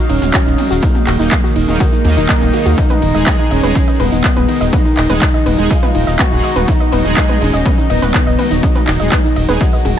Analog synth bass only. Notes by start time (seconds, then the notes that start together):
0.09 D#1
0.22 D#1
0.46 D#1
0.71 D#1
1.07 D#1
1.19 D#1
1.56 D#1
1.68 D#1
2.05 D#2
2.17 D#1
2.41 D#1
2.66 D#2
3.02 D#1
3.14 D#1
3.51 D#1
3.63 D#1
4.00 D#1
4.12 D#1
4.37 D#1
4.61 D#1
4.97 D#1
5.10 D#1
5.46 D#1
5.58 D#1
5.95 D#1
6.07 D#1
6.32 D#1
6.56 D#1
6.92 D#1
7.05 D#1
7.41 D#1
7.53 D#1
7.90 D#1
8.02 D#1
8.27 D#1
8.51 D#1
8.88 D#1
9.00 D#1
9.36 D#1
9.49 D#1
9.85 D#1